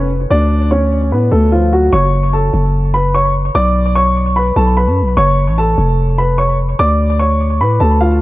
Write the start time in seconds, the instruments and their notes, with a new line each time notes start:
Already playing: 808-style bass F1
0.30 808-style bass D2, grand piano D4 D5
0.71 grand piano C#4 C#5
1.12 808-style bass A2, grand piano B3 B4
1.31 808-style bass D2, grand piano A3 A4
1.52 grand piano F3 F4
1.73 grand piano F#3 F#4
1.93 808-style bass F#1, grand piano C#5 C#6
2.33 grand piano A4 A5
2.53 808-style bass F#1
2.94 grand piano B4 B5
3.14 grand piano C#5 C#6
3.55 808-style bass B1, grand piano D5 D6
3.96 grand piano C#5 C#6
4.36 grand piano B4 B5
4.56 808-style bass B1, grand piano A4 A5
4.77 grand piano B4 B5
4.87 808-style bass F#2
5.02 808-style bass B1
5.17 808-style bass F#1, grand piano C#5 C#6
5.48 808-style bass A1
5.58 grand piano A4 A5
5.78 808-style bass F1
6.18 grand piano B4 B5
6.38 grand piano C#5 C#6
6.79 808-style bass D2, grand piano D5 D6
7.19 grand piano C#5 C#6
7.60 808-style bass A2, grand piano B4 B5
7.80 808-style bass D2, grand piano A4 A5
8.01 grand piano F4 F5